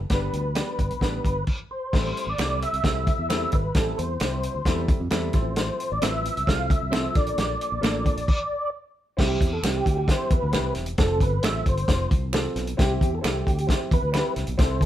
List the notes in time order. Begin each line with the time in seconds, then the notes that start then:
0.10 G1 G3 B3 D4 B4, kick, snare, closed hi-hat
0.33 D2, closed hi-hat
0.55 G3 B3 D4 G4 B4 D5, finger snap, snare, closed hi-hat
0.79 G1, kick, closed hi-hat
0.90 B1, closed hi-hat
1.00 A1 G3 B3 D4 B4, kick, snare, closed hi-hat
1.25 G1, kick, closed hi-hat
1.47 kick, crash
1.71 C5
1.93 A1 G3 C4 E4 A4, kick, snare, crash
2.17 closed hi-hat
2.27 A1 D5
2.38 C2 G3 C4 E4 A4, finger snap, snare, closed hi-hat
2.62 E5, closed hi-hat
2.73 C2, closed hi-hat
2.83 C2 G3 C4 E4 A4, kick, snare, closed hi-hat
3.07 kick, closed hi-hat
3.18 E2
3.29 G3 C4 E4 A4, finger snap, snare, closed hi-hat
3.52 G#1 B4, kick, closed hi-hat
3.74 A1 G3 C4 E4 A4, kick, snare, closed hi-hat
3.98 E2 C5, closed hi-hat
4.20 C2 G3 C4 E4 G4, finger snap, snare, closed hi-hat
4.43 closed hi-hat
4.55 D2
4.65 E2 G3 C4 E4 A4, kick, snare, closed hi-hat
4.88 kick, closed hi-hat
5.00 F2
5.10 E2 G3 C4 E4 A4, finger snap, snare, closed hi-hat
5.33 A1 F3 C4 E4 A4 C5, kick, snare, closed hi-hat
5.56 snare, closed hi-hat
5.80 closed hi-hat
5.92 A1 D5
6.02 A1 F3 C4 E4 A4 B4 C5 E5, finger snap, snare, closed hi-hat
6.25 closed hi-hat
6.37 C2, closed hi-hat
6.47 C2 F3 C4 E4 A4 F5, kick, snare, closed hi-hat
6.70 E5, kick, closed hi-hat
6.82 C2
6.91 F3 C4 E4 A4 C5, finger snap, snare, closed hi-hat
7.14 A#1 F3 A#3 D4 A4 D5, kick, snare, closed hi-hat
7.27 closed hi-hat
7.38 A#1, snare, closed hi-hat
7.61 closed hi-hat
7.72 A#1
7.81 A1 F3 A#3 D4 F4 A4, finger snap, snare, closed hi-hat
7.85 D5
8.06 kick, closed hi-hat
8.16 A#1, closed hi-hat
8.28 kick, crash
9.17 C2 C4 E4 G4, kick, snare, crash
9.41 E2, kick, closed hi-hat
9.53 A4
9.63 C2 C4 E4 G4, finger snap, snare, closed hi-hat
9.86 D2, kick, closed hi-hat
9.98 G4
10.08 C4 E4 G4 C5, kick, snare, closed hi-hat
10.30 E2 B4, kick, closed hi-hat
10.43 D2
10.52 C2 C4 E4 G4, finger snap, snare, closed hi-hat
10.75 E1, snare, closed hi-hat
10.86 closed hi-hat
10.98 F1 C4 F4 A4, kick, snare, closed hi-hat
11.20 G1 B4, kick, closed hi-hat
11.42 A1 C4 F4 A4 E5, finger snap, snare, closed hi-hat
11.66 G1 C5, kick, closed hi-hat
11.77 closed hi-hat
11.88 F1 C4 F4 C5, kick, snare, closed hi-hat
12.11 C2, kick, closed hi-hat
12.33 C4 F4 A4, finger snap, snare, closed hi-hat
12.56 B1, snare, closed hi-hat
12.67 closed hi-hat
12.77 C2 C4 E4 G4, kick, snare, closed hi-hat
13.01 E2, kick, closed hi-hat
13.15 A4
13.21 C2 C4 E4 A4, finger snap, snare, closed hi-hat
13.26 G4
13.47 D2, kick, closed hi-hat
13.58 G4, closed hi-hat
13.67 C4 E4 G4 C5, kick, snare, closed hi-hat
13.91 E2 B4, kick, closed hi-hat
14.02 D2
14.12 C4 E4 G4, finger snap, snare, closed hi-hat
14.36 C2, snare, closed hi-hat
14.47 B1, closed hi-hat
14.58 C2 C4 E4 A4 C5, kick, snare, closed hi-hat
14.81 D2 A4, kick, closed hi-hat